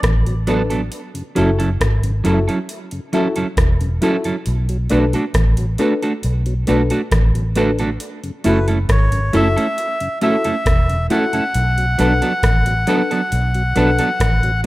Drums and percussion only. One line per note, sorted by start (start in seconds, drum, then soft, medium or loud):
0.03 kick loud
0.03 cross-stick loud
0.03 closed hi-hat medium
0.26 closed hi-hat soft
0.47 closed hi-hat medium
0.70 closed hi-hat soft
0.92 closed hi-hat medium
1.15 closed hi-hat medium
1.36 closed hi-hat medium
1.60 closed hi-hat soft
1.80 kick loud
1.80 cross-stick loud
1.80 closed hi-hat medium
2.03 closed hi-hat medium
2.25 closed hi-hat medium
2.49 closed hi-hat soft
2.69 closed hi-hat medium
2.91 closed hi-hat soft
3.13 closed hi-hat medium
3.36 closed hi-hat medium
3.57 kick loud
3.57 cross-stick loud
3.57 closed hi-hat medium
3.81 closed hi-hat soft
4.02 closed hi-hat medium
4.24 closed hi-hat soft
4.46 closed hi-hat medium
4.69 closed hi-hat soft
4.90 closed hi-hat medium
5.13 closed hi-hat soft
5.34 kick loud
5.34 cross-stick loud
5.34 closed hi-hat medium
5.57 closed hi-hat medium
5.78 closed hi-hat medium
6.02 closed hi-hat soft
6.23 closed hi-hat medium
6.46 closed hi-hat medium
6.67 closed hi-hat medium
6.90 closed hi-hat medium
7.11 kick loud
7.11 cross-stick loud
7.11 closed hi-hat loud
7.35 closed hi-hat soft
7.56 closed hi-hat medium
7.79 closed hi-hat soft
8.00 closed hi-hat medium
8.24 closed hi-hat soft
8.44 closed hi-hat medium
8.68 closed hi-hat soft
8.89 kick loud
8.89 cross-stick loud
8.89 closed hi-hat medium
9.12 closed hi-hat medium
9.33 closed hi-hat medium
9.58 closed hi-hat soft
9.78 closed hi-hat medium
10.00 closed hi-hat soft
10.21 closed hi-hat medium
10.44 closed hi-hat medium
10.66 kick loud
10.66 cross-stick loud
10.66 closed hi-hat medium
10.89 closed hi-hat soft
11.10 closed hi-hat medium
11.33 closed hi-hat soft
11.54 closed hi-hat medium
11.78 closed hi-hat soft
11.99 closed hi-hat medium
12.22 closed hi-hat soft
12.43 kick loud
12.43 cross-stick loud
12.43 closed hi-hat medium
12.66 closed hi-hat medium
12.87 closed hi-hat medium
13.11 closed hi-hat soft
13.32 closed hi-hat medium
13.54 closed hi-hat soft
13.76 closed hi-hat medium
13.99 closed hi-hat medium
14.20 kick loud
14.20 cross-stick loud
14.20 closed hi-hat medium
14.43 closed hi-hat soft